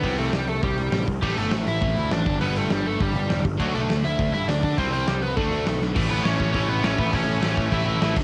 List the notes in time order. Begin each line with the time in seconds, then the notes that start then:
Already playing: B3 B4
0.03 C2 C3 G3 C4, kick, open hi-hat
0.18 A3 A4, open hi-hat
0.33 C2 C3 G3 G4, snare, open hi-hat
0.48 A3 A4, open hi-hat
0.62 C2 C3 G3 G4, kick, open hi-hat
0.78 C2, open hi-hat
0.92 A1 C3 G3, snare, open hi-hat
1.07 C2, kick, open hi-hat
1.22 A1 A2 E3 G3 A3 G4, kick, crash
1.36 G1 A3 A4, open hi-hat
1.51 A1 A2 E3, snare, open hi-hat
1.67 A1 E4 E5, open hi-hat
1.81 A1 A2 E3 A3, kick, open hi-hat
1.96 D2, open hi-hat
2.11 A1 A2 E3 D4 D5, snare, open hi-hat
2.26 G1 G2 D3 G3, kick, open hi-hat
2.41 G1 G2 D3 G3 B3 B4, open hi-hat
2.56 A3 A4, open hi-hat
2.70 G1 G2 D3 G3 G4, snare, open hi-hat
2.84 G2 D3 G3 A4, open hi-hat
2.88 A3
3.00 G1 G2 D3 G3 G4, kick, open hi-hat
3.14 G1, open hi-hat
3.30 E1 G2 D3, snare, open hi-hat
3.45 G1, kick, open hi-hat
3.60 D2 D3 F#3 A3 D4 F#4, kick, crash
3.74 B1 A3 A4, open hi-hat
3.89 D2 D3 A3, snare, open hi-hat
4.04 D2 E4 E5, open hi-hat
4.19 D2 D3 A3 D4, kick, open hi-hat
4.34 G2 E4 E5, open hi-hat
4.48 D2 D3 A3 D4 D5, snare, open hi-hat
4.63 D3 D4 D5, kick, open hi-hat
4.78 C2 C3 G3 C4 C5, kick, open hi-hat
4.93 C4 C5, open hi-hat
5.07 C2 C3 G3 G4, snare, open hi-hat
5.22 B3 B4, open hi-hat
5.36 D2 D3 A3 D4 A4, kick, open hi-hat
5.52 D2, open hi-hat
5.66 B1 D3 A3, snare, open hi-hat
5.81 B1, snare
5.95 A1 A2 E3 A3, kick, crash
6.11 A1 B3 B4
6.25 A1 A2 E3 A3 C#4 C#5, snare, open hi-hat
6.40 A1, kick
6.53 A1 A2 E3 A3 C#4 C#5, kick, open hi-hat
6.69 A1 B3 B4
6.83 A1 A2 E3 A3 C#4 C#5, snare, open hi-hat
6.98 A1 B3 B4, kick
7.13 A1 A2 E3 A3 C#4 C#5, kick, open hi-hat
7.28 A1
7.41 A1 A2 E3 A3, snare, open hi-hat
7.57 A1, kick
7.72 A1 A2 E3 A3 E4 E5, kick, open hi-hat
7.87 A1
8.01 A1 A2 E3 A3, snare, open hi-hat
8.15 G1 G2 D3 G3, kick, crash